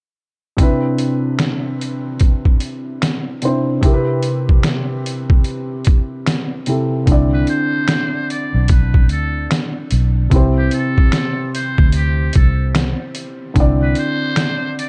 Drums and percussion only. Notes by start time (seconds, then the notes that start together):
0.58 kick, closed hi-hat
0.98 closed hi-hat
1.39 finger snap, snare, closed hi-hat
1.81 closed hi-hat
2.20 kick, closed hi-hat
2.45 kick
2.60 closed hi-hat
3.02 finger snap, snare, closed hi-hat
3.42 closed hi-hat
3.83 kick, closed hi-hat
4.23 closed hi-hat
4.49 kick
4.63 finger snap, snare, closed hi-hat
5.06 closed hi-hat
5.30 kick
5.44 closed hi-hat
5.85 kick, closed hi-hat
6.26 finger snap, snare, closed hi-hat
6.66 closed hi-hat
7.07 kick, closed hi-hat
7.47 closed hi-hat
7.88 finger snap, snare, closed hi-hat
8.30 closed hi-hat
8.68 kick, closed hi-hat
8.94 kick
9.09 closed hi-hat
9.51 finger snap, snare, closed hi-hat
9.91 closed hi-hat
10.31 kick, closed hi-hat
10.71 closed hi-hat
10.98 kick
11.12 finger snap, snare, closed hi-hat
11.55 closed hi-hat
11.78 kick
11.92 closed hi-hat
12.33 kick, closed hi-hat
12.75 finger snap, snare, closed hi-hat
13.15 closed hi-hat
13.56 kick, closed hi-hat
13.95 closed hi-hat
14.36 finger snap, snare, closed hi-hat
14.79 closed hi-hat